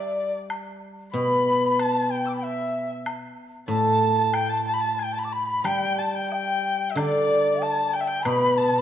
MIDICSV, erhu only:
0, 0, Header, 1, 2, 480
1, 0, Start_track
1, 0, Tempo, 641711
1, 377, Time_signature, 2, 2, 24, 8
1, 3253, Tempo, 657895
1, 5173, Tempo, 638298
1, 6553, End_track
2, 0, Start_track
2, 0, Title_t, "Erhu"
2, 0, Program_c, 0, 110
2, 0, Note_on_c, 0, 74, 58
2, 250, Note_off_c, 0, 74, 0
2, 853, Note_on_c, 0, 83, 79
2, 1342, Note_on_c, 0, 81, 78
2, 1353, Note_off_c, 0, 83, 0
2, 1579, Note_on_c, 0, 79, 74
2, 1590, Note_off_c, 0, 81, 0
2, 1663, Note_off_c, 0, 79, 0
2, 1668, Note_on_c, 0, 91, 28
2, 1689, Note_off_c, 0, 91, 0
2, 1693, Note_on_c, 0, 88, 30
2, 1708, Note_off_c, 0, 88, 0
2, 1711, Note_on_c, 0, 86, 32
2, 1747, Note_off_c, 0, 86, 0
2, 1752, Note_on_c, 0, 83, 36
2, 1768, Note_off_c, 0, 83, 0
2, 1772, Note_on_c, 0, 81, 39
2, 1790, Note_off_c, 0, 81, 0
2, 1794, Note_on_c, 0, 79, 42
2, 1821, Note_on_c, 0, 76, 61
2, 1832, Note_off_c, 0, 79, 0
2, 2175, Note_off_c, 0, 76, 0
2, 2759, Note_on_c, 0, 81, 82
2, 3101, Note_off_c, 0, 81, 0
2, 3132, Note_on_c, 0, 81, 74
2, 3250, Note_on_c, 0, 79, 80
2, 3261, Note_off_c, 0, 81, 0
2, 3359, Note_on_c, 0, 81, 69
2, 3369, Note_off_c, 0, 79, 0
2, 3481, Note_off_c, 0, 81, 0
2, 3486, Note_on_c, 0, 81, 79
2, 3535, Note_on_c, 0, 83, 60
2, 3546, Note_off_c, 0, 81, 0
2, 3586, Note_on_c, 0, 81, 77
2, 3597, Note_off_c, 0, 83, 0
2, 3724, Note_on_c, 0, 79, 67
2, 3735, Note_off_c, 0, 81, 0
2, 3833, Note_off_c, 0, 79, 0
2, 3836, Note_on_c, 0, 81, 66
2, 3866, Note_on_c, 0, 83, 50
2, 3877, Note_off_c, 0, 81, 0
2, 3897, Note_on_c, 0, 81, 64
2, 3908, Note_off_c, 0, 83, 0
2, 3964, Note_on_c, 0, 83, 69
2, 3975, Note_off_c, 0, 81, 0
2, 4199, Note_on_c, 0, 79, 86
2, 4209, Note_off_c, 0, 83, 0
2, 4448, Note_on_c, 0, 81, 72
2, 4459, Note_off_c, 0, 79, 0
2, 4528, Note_off_c, 0, 81, 0
2, 4528, Note_on_c, 0, 81, 49
2, 4567, Note_on_c, 0, 79, 75
2, 4578, Note_off_c, 0, 81, 0
2, 4682, Note_off_c, 0, 79, 0
2, 4686, Note_on_c, 0, 79, 81
2, 5124, Note_on_c, 0, 76, 57
2, 5135, Note_off_c, 0, 79, 0
2, 5176, Note_on_c, 0, 74, 89
2, 5187, Note_off_c, 0, 76, 0
2, 5658, Note_on_c, 0, 81, 74
2, 5669, Note_off_c, 0, 74, 0
2, 5889, Note_on_c, 0, 79, 72
2, 5901, Note_off_c, 0, 81, 0
2, 5944, Note_on_c, 0, 76, 69
2, 5955, Note_off_c, 0, 79, 0
2, 5996, Note_on_c, 0, 79, 82
2, 6008, Note_off_c, 0, 76, 0
2, 6128, Note_off_c, 0, 79, 0
2, 6133, Note_on_c, 0, 83, 92
2, 6372, Note_on_c, 0, 81, 84
2, 6383, Note_off_c, 0, 83, 0
2, 6553, Note_off_c, 0, 81, 0
2, 6553, End_track
0, 0, End_of_file